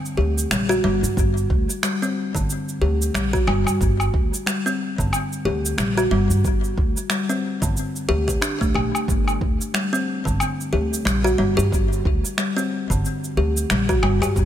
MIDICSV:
0, 0, Header, 1, 4, 480
1, 0, Start_track
1, 0, Key_signature, -2, "minor"
1, 0, Tempo, 659341
1, 852, Time_signature, 4, 2, 24, 8
1, 10520, End_track
2, 0, Start_track
2, 0, Title_t, "Kalimba"
2, 0, Program_c, 0, 108
2, 0, Note_on_c, 0, 50, 73
2, 120, Note_off_c, 0, 50, 0
2, 127, Note_on_c, 0, 67, 69
2, 359, Note_off_c, 0, 67, 0
2, 374, Note_on_c, 0, 55, 81
2, 498, Note_off_c, 0, 55, 0
2, 505, Note_on_c, 0, 66, 93
2, 604, Note_off_c, 0, 66, 0
2, 611, Note_on_c, 0, 55, 93
2, 1082, Note_off_c, 0, 55, 0
2, 1333, Note_on_c, 0, 55, 79
2, 1457, Note_off_c, 0, 55, 0
2, 1473, Note_on_c, 0, 60, 70
2, 1698, Note_off_c, 0, 60, 0
2, 1708, Note_on_c, 0, 50, 74
2, 2041, Note_off_c, 0, 50, 0
2, 2050, Note_on_c, 0, 67, 73
2, 2281, Note_off_c, 0, 67, 0
2, 2290, Note_on_c, 0, 55, 84
2, 2415, Note_off_c, 0, 55, 0
2, 2427, Note_on_c, 0, 66, 91
2, 2525, Note_off_c, 0, 66, 0
2, 2529, Note_on_c, 0, 55, 92
2, 3000, Note_off_c, 0, 55, 0
2, 3250, Note_on_c, 0, 55, 75
2, 3376, Note_off_c, 0, 55, 0
2, 3393, Note_on_c, 0, 60, 72
2, 3618, Note_off_c, 0, 60, 0
2, 3628, Note_on_c, 0, 50, 71
2, 3961, Note_off_c, 0, 50, 0
2, 3970, Note_on_c, 0, 67, 73
2, 4201, Note_off_c, 0, 67, 0
2, 4207, Note_on_c, 0, 55, 82
2, 4334, Note_off_c, 0, 55, 0
2, 4350, Note_on_c, 0, 66, 94
2, 4446, Note_off_c, 0, 66, 0
2, 4450, Note_on_c, 0, 55, 96
2, 4921, Note_off_c, 0, 55, 0
2, 5171, Note_on_c, 0, 55, 77
2, 5296, Note_off_c, 0, 55, 0
2, 5311, Note_on_c, 0, 60, 72
2, 5537, Note_off_c, 0, 60, 0
2, 5546, Note_on_c, 0, 50, 70
2, 5880, Note_off_c, 0, 50, 0
2, 5887, Note_on_c, 0, 67, 97
2, 5968, Note_off_c, 0, 67, 0
2, 6027, Note_on_c, 0, 67, 88
2, 6125, Note_off_c, 0, 67, 0
2, 6126, Note_on_c, 0, 62, 81
2, 6254, Note_off_c, 0, 62, 0
2, 6268, Note_on_c, 0, 57, 70
2, 6366, Note_off_c, 0, 57, 0
2, 6366, Note_on_c, 0, 67, 66
2, 6448, Note_off_c, 0, 67, 0
2, 7091, Note_on_c, 0, 55, 80
2, 7216, Note_off_c, 0, 55, 0
2, 7228, Note_on_c, 0, 60, 75
2, 7455, Note_off_c, 0, 60, 0
2, 7464, Note_on_c, 0, 50, 71
2, 7799, Note_off_c, 0, 50, 0
2, 7809, Note_on_c, 0, 67, 72
2, 8040, Note_off_c, 0, 67, 0
2, 8046, Note_on_c, 0, 55, 83
2, 8174, Note_off_c, 0, 55, 0
2, 8186, Note_on_c, 0, 66, 99
2, 8285, Note_off_c, 0, 66, 0
2, 8287, Note_on_c, 0, 55, 97
2, 8414, Note_off_c, 0, 55, 0
2, 8423, Note_on_c, 0, 67, 104
2, 8523, Note_off_c, 0, 67, 0
2, 9012, Note_on_c, 0, 55, 79
2, 9137, Note_off_c, 0, 55, 0
2, 9148, Note_on_c, 0, 60, 77
2, 9375, Note_off_c, 0, 60, 0
2, 9391, Note_on_c, 0, 50, 73
2, 9722, Note_off_c, 0, 50, 0
2, 9736, Note_on_c, 0, 67, 71
2, 9964, Note_off_c, 0, 67, 0
2, 9977, Note_on_c, 0, 55, 87
2, 10099, Note_off_c, 0, 55, 0
2, 10113, Note_on_c, 0, 66, 98
2, 10208, Note_off_c, 0, 66, 0
2, 10214, Note_on_c, 0, 55, 94
2, 10338, Note_off_c, 0, 55, 0
2, 10351, Note_on_c, 0, 67, 95
2, 10447, Note_off_c, 0, 67, 0
2, 10520, End_track
3, 0, Start_track
3, 0, Title_t, "Upright bass"
3, 0, Program_c, 1, 32
3, 132, Note_on_c, 1, 38, 81
3, 324, Note_off_c, 1, 38, 0
3, 373, Note_on_c, 1, 34, 76
3, 564, Note_off_c, 1, 34, 0
3, 613, Note_on_c, 1, 31, 86
3, 718, Note_off_c, 1, 31, 0
3, 749, Note_on_c, 1, 43, 76
3, 827, Note_off_c, 1, 43, 0
3, 854, Note_on_c, 1, 31, 88
3, 1045, Note_off_c, 1, 31, 0
3, 1092, Note_on_c, 1, 38, 86
3, 1198, Note_off_c, 1, 38, 0
3, 1712, Note_on_c, 1, 31, 85
3, 1789, Note_off_c, 1, 31, 0
3, 2051, Note_on_c, 1, 38, 78
3, 2244, Note_off_c, 1, 38, 0
3, 2290, Note_on_c, 1, 34, 76
3, 2483, Note_off_c, 1, 34, 0
3, 2532, Note_on_c, 1, 31, 88
3, 2638, Note_off_c, 1, 31, 0
3, 2670, Note_on_c, 1, 43, 83
3, 2748, Note_off_c, 1, 43, 0
3, 2772, Note_on_c, 1, 31, 95
3, 2964, Note_off_c, 1, 31, 0
3, 3012, Note_on_c, 1, 38, 88
3, 3118, Note_off_c, 1, 38, 0
3, 3630, Note_on_c, 1, 31, 86
3, 3708, Note_off_c, 1, 31, 0
3, 3969, Note_on_c, 1, 38, 87
3, 4163, Note_off_c, 1, 38, 0
3, 4208, Note_on_c, 1, 34, 80
3, 4402, Note_off_c, 1, 34, 0
3, 4449, Note_on_c, 1, 31, 87
3, 4557, Note_off_c, 1, 31, 0
3, 4589, Note_on_c, 1, 43, 80
3, 4667, Note_off_c, 1, 43, 0
3, 4692, Note_on_c, 1, 31, 84
3, 4884, Note_off_c, 1, 31, 0
3, 4933, Note_on_c, 1, 38, 92
3, 5038, Note_off_c, 1, 38, 0
3, 5549, Note_on_c, 1, 31, 89
3, 5627, Note_off_c, 1, 31, 0
3, 5891, Note_on_c, 1, 38, 81
3, 6084, Note_off_c, 1, 38, 0
3, 6272, Note_on_c, 1, 38, 83
3, 6349, Note_off_c, 1, 38, 0
3, 6372, Note_on_c, 1, 34, 81
3, 6478, Note_off_c, 1, 34, 0
3, 6611, Note_on_c, 1, 31, 91
3, 6804, Note_off_c, 1, 31, 0
3, 6852, Note_on_c, 1, 38, 89
3, 6958, Note_off_c, 1, 38, 0
3, 7472, Note_on_c, 1, 31, 90
3, 7549, Note_off_c, 1, 31, 0
3, 7813, Note_on_c, 1, 38, 83
3, 8005, Note_off_c, 1, 38, 0
3, 8053, Note_on_c, 1, 34, 80
3, 8244, Note_off_c, 1, 34, 0
3, 8293, Note_on_c, 1, 31, 85
3, 8398, Note_off_c, 1, 31, 0
3, 8432, Note_on_c, 1, 43, 79
3, 8509, Note_off_c, 1, 43, 0
3, 8535, Note_on_c, 1, 31, 94
3, 8726, Note_off_c, 1, 31, 0
3, 8777, Note_on_c, 1, 38, 91
3, 8880, Note_off_c, 1, 38, 0
3, 9393, Note_on_c, 1, 31, 87
3, 9469, Note_off_c, 1, 31, 0
3, 9735, Note_on_c, 1, 38, 81
3, 9925, Note_off_c, 1, 38, 0
3, 9977, Note_on_c, 1, 34, 83
3, 10167, Note_off_c, 1, 34, 0
3, 10214, Note_on_c, 1, 31, 87
3, 10319, Note_off_c, 1, 31, 0
3, 10455, Note_on_c, 1, 31, 99
3, 10520, Note_off_c, 1, 31, 0
3, 10520, End_track
4, 0, Start_track
4, 0, Title_t, "Drums"
4, 40, Note_on_c, 9, 69, 27
4, 113, Note_off_c, 9, 69, 0
4, 279, Note_on_c, 9, 69, 59
4, 351, Note_off_c, 9, 69, 0
4, 372, Note_on_c, 9, 26, 105
4, 378, Note_on_c, 9, 69, 59
4, 445, Note_off_c, 9, 26, 0
4, 451, Note_off_c, 9, 69, 0
4, 517, Note_on_c, 9, 69, 31
4, 589, Note_off_c, 9, 69, 0
4, 758, Note_on_c, 9, 69, 59
4, 831, Note_off_c, 9, 69, 0
4, 853, Note_on_c, 9, 36, 120
4, 859, Note_on_c, 9, 69, 53
4, 926, Note_off_c, 9, 36, 0
4, 932, Note_off_c, 9, 69, 0
4, 999, Note_on_c, 9, 69, 32
4, 1072, Note_off_c, 9, 69, 0
4, 1092, Note_on_c, 9, 36, 92
4, 1165, Note_off_c, 9, 36, 0
4, 1237, Note_on_c, 9, 69, 63
4, 1310, Note_off_c, 9, 69, 0
4, 1333, Note_on_c, 9, 26, 98
4, 1339, Note_on_c, 9, 69, 52
4, 1405, Note_off_c, 9, 26, 0
4, 1412, Note_off_c, 9, 69, 0
4, 1477, Note_on_c, 9, 69, 32
4, 1550, Note_off_c, 9, 69, 0
4, 1711, Note_on_c, 9, 36, 58
4, 1719, Note_on_c, 9, 69, 66
4, 1783, Note_off_c, 9, 36, 0
4, 1792, Note_off_c, 9, 69, 0
4, 1819, Note_on_c, 9, 69, 54
4, 1892, Note_off_c, 9, 69, 0
4, 1956, Note_on_c, 9, 69, 32
4, 2029, Note_off_c, 9, 69, 0
4, 2199, Note_on_c, 9, 69, 61
4, 2272, Note_off_c, 9, 69, 0
4, 2294, Note_on_c, 9, 26, 99
4, 2301, Note_on_c, 9, 69, 57
4, 2367, Note_off_c, 9, 26, 0
4, 2374, Note_off_c, 9, 69, 0
4, 2431, Note_on_c, 9, 36, 111
4, 2438, Note_on_c, 9, 69, 31
4, 2503, Note_off_c, 9, 36, 0
4, 2511, Note_off_c, 9, 69, 0
4, 2530, Note_on_c, 9, 77, 82
4, 2603, Note_off_c, 9, 77, 0
4, 2669, Note_on_c, 9, 77, 57
4, 2676, Note_on_c, 9, 69, 61
4, 2742, Note_off_c, 9, 77, 0
4, 2749, Note_off_c, 9, 69, 0
4, 2772, Note_on_c, 9, 36, 114
4, 2778, Note_on_c, 9, 69, 53
4, 2845, Note_off_c, 9, 36, 0
4, 2851, Note_off_c, 9, 69, 0
4, 2911, Note_on_c, 9, 77, 56
4, 2917, Note_on_c, 9, 69, 32
4, 2984, Note_off_c, 9, 77, 0
4, 2990, Note_off_c, 9, 69, 0
4, 3012, Note_on_c, 9, 36, 102
4, 3085, Note_off_c, 9, 36, 0
4, 3160, Note_on_c, 9, 69, 67
4, 3233, Note_off_c, 9, 69, 0
4, 3255, Note_on_c, 9, 26, 94
4, 3262, Note_on_c, 9, 69, 53
4, 3328, Note_off_c, 9, 26, 0
4, 3335, Note_off_c, 9, 69, 0
4, 3399, Note_on_c, 9, 69, 35
4, 3472, Note_off_c, 9, 69, 0
4, 3631, Note_on_c, 9, 36, 57
4, 3641, Note_on_c, 9, 69, 65
4, 3703, Note_off_c, 9, 36, 0
4, 3713, Note_off_c, 9, 69, 0
4, 3733, Note_on_c, 9, 77, 73
4, 3740, Note_on_c, 9, 69, 54
4, 3806, Note_off_c, 9, 77, 0
4, 3813, Note_off_c, 9, 69, 0
4, 3878, Note_on_c, 9, 69, 33
4, 3950, Note_off_c, 9, 69, 0
4, 4118, Note_on_c, 9, 69, 62
4, 4191, Note_off_c, 9, 69, 0
4, 4210, Note_on_c, 9, 26, 103
4, 4217, Note_on_c, 9, 69, 59
4, 4283, Note_off_c, 9, 26, 0
4, 4290, Note_off_c, 9, 69, 0
4, 4357, Note_on_c, 9, 69, 33
4, 4429, Note_off_c, 9, 69, 0
4, 4591, Note_on_c, 9, 69, 66
4, 4664, Note_off_c, 9, 69, 0
4, 4693, Note_on_c, 9, 36, 118
4, 4695, Note_on_c, 9, 69, 51
4, 4766, Note_off_c, 9, 36, 0
4, 4768, Note_off_c, 9, 69, 0
4, 4836, Note_on_c, 9, 69, 32
4, 4909, Note_off_c, 9, 69, 0
4, 4932, Note_on_c, 9, 36, 101
4, 5005, Note_off_c, 9, 36, 0
4, 5075, Note_on_c, 9, 69, 63
4, 5147, Note_off_c, 9, 69, 0
4, 5167, Note_on_c, 9, 26, 92
4, 5173, Note_on_c, 9, 69, 54
4, 5239, Note_off_c, 9, 26, 0
4, 5246, Note_off_c, 9, 69, 0
4, 5314, Note_on_c, 9, 69, 32
4, 5387, Note_off_c, 9, 69, 0
4, 5550, Note_on_c, 9, 36, 56
4, 5553, Note_on_c, 9, 69, 68
4, 5623, Note_off_c, 9, 36, 0
4, 5626, Note_off_c, 9, 69, 0
4, 5657, Note_on_c, 9, 69, 54
4, 5730, Note_off_c, 9, 69, 0
4, 5794, Note_on_c, 9, 69, 31
4, 5867, Note_off_c, 9, 69, 0
4, 6030, Note_on_c, 9, 36, 60
4, 6036, Note_on_c, 9, 69, 61
4, 6103, Note_off_c, 9, 36, 0
4, 6109, Note_off_c, 9, 69, 0
4, 6132, Note_on_c, 9, 26, 104
4, 6138, Note_on_c, 9, 69, 60
4, 6204, Note_off_c, 9, 26, 0
4, 6211, Note_off_c, 9, 69, 0
4, 6270, Note_on_c, 9, 36, 104
4, 6278, Note_on_c, 9, 69, 32
4, 6343, Note_off_c, 9, 36, 0
4, 6350, Note_off_c, 9, 69, 0
4, 6373, Note_on_c, 9, 77, 70
4, 6445, Note_off_c, 9, 77, 0
4, 6514, Note_on_c, 9, 77, 55
4, 6521, Note_on_c, 9, 69, 64
4, 6587, Note_off_c, 9, 77, 0
4, 6594, Note_off_c, 9, 69, 0
4, 6612, Note_on_c, 9, 36, 112
4, 6622, Note_on_c, 9, 69, 50
4, 6685, Note_off_c, 9, 36, 0
4, 6695, Note_off_c, 9, 69, 0
4, 6753, Note_on_c, 9, 77, 51
4, 6759, Note_on_c, 9, 69, 30
4, 6826, Note_off_c, 9, 77, 0
4, 6832, Note_off_c, 9, 69, 0
4, 6852, Note_on_c, 9, 36, 94
4, 6925, Note_off_c, 9, 36, 0
4, 6998, Note_on_c, 9, 69, 60
4, 7071, Note_off_c, 9, 69, 0
4, 7094, Note_on_c, 9, 26, 87
4, 7101, Note_on_c, 9, 69, 54
4, 7167, Note_off_c, 9, 26, 0
4, 7174, Note_off_c, 9, 69, 0
4, 7241, Note_on_c, 9, 69, 31
4, 7313, Note_off_c, 9, 69, 0
4, 7471, Note_on_c, 9, 36, 60
4, 7480, Note_on_c, 9, 69, 64
4, 7544, Note_off_c, 9, 36, 0
4, 7553, Note_off_c, 9, 69, 0
4, 7572, Note_on_c, 9, 77, 73
4, 7579, Note_on_c, 9, 69, 55
4, 7645, Note_off_c, 9, 77, 0
4, 7651, Note_off_c, 9, 69, 0
4, 7723, Note_on_c, 9, 69, 30
4, 7795, Note_off_c, 9, 69, 0
4, 7962, Note_on_c, 9, 69, 58
4, 8035, Note_off_c, 9, 69, 0
4, 8058, Note_on_c, 9, 26, 96
4, 8064, Note_on_c, 9, 69, 56
4, 8131, Note_off_c, 9, 26, 0
4, 8137, Note_off_c, 9, 69, 0
4, 8203, Note_on_c, 9, 69, 29
4, 8275, Note_off_c, 9, 69, 0
4, 8439, Note_on_c, 9, 69, 61
4, 8512, Note_off_c, 9, 69, 0
4, 8534, Note_on_c, 9, 36, 113
4, 8543, Note_on_c, 9, 69, 50
4, 8607, Note_off_c, 9, 36, 0
4, 8616, Note_off_c, 9, 69, 0
4, 8682, Note_on_c, 9, 69, 31
4, 8755, Note_off_c, 9, 69, 0
4, 8775, Note_on_c, 9, 36, 91
4, 8848, Note_off_c, 9, 36, 0
4, 8919, Note_on_c, 9, 69, 60
4, 8992, Note_off_c, 9, 69, 0
4, 9012, Note_on_c, 9, 26, 86
4, 9019, Note_on_c, 9, 69, 48
4, 9085, Note_off_c, 9, 26, 0
4, 9092, Note_off_c, 9, 69, 0
4, 9160, Note_on_c, 9, 69, 33
4, 9232, Note_off_c, 9, 69, 0
4, 9393, Note_on_c, 9, 36, 52
4, 9401, Note_on_c, 9, 69, 59
4, 9466, Note_off_c, 9, 36, 0
4, 9474, Note_off_c, 9, 69, 0
4, 9502, Note_on_c, 9, 69, 48
4, 9575, Note_off_c, 9, 69, 0
4, 9640, Note_on_c, 9, 69, 30
4, 9713, Note_off_c, 9, 69, 0
4, 9879, Note_on_c, 9, 69, 59
4, 9952, Note_off_c, 9, 69, 0
4, 9973, Note_on_c, 9, 26, 98
4, 9980, Note_on_c, 9, 69, 58
4, 10046, Note_off_c, 9, 26, 0
4, 10053, Note_off_c, 9, 69, 0
4, 10112, Note_on_c, 9, 36, 101
4, 10117, Note_on_c, 9, 69, 31
4, 10185, Note_off_c, 9, 36, 0
4, 10190, Note_off_c, 9, 69, 0
4, 10212, Note_on_c, 9, 77, 75
4, 10285, Note_off_c, 9, 77, 0
4, 10352, Note_on_c, 9, 77, 54
4, 10359, Note_on_c, 9, 69, 59
4, 10425, Note_off_c, 9, 77, 0
4, 10431, Note_off_c, 9, 69, 0
4, 10455, Note_on_c, 9, 36, 107
4, 10458, Note_on_c, 9, 69, 51
4, 10520, Note_off_c, 9, 36, 0
4, 10520, Note_off_c, 9, 69, 0
4, 10520, End_track
0, 0, End_of_file